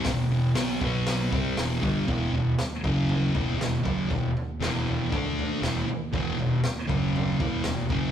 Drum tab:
HH |o-o-o-o-|--------|--------|--------|
SD |o-o-o-o-|--o---o-|--o---o-|--o---o-|
FT |--------|oooooooo|oooooooo|oooooooo|
BD |o--o-o-o|o--o-o-o|o---o---|o--o-o-o|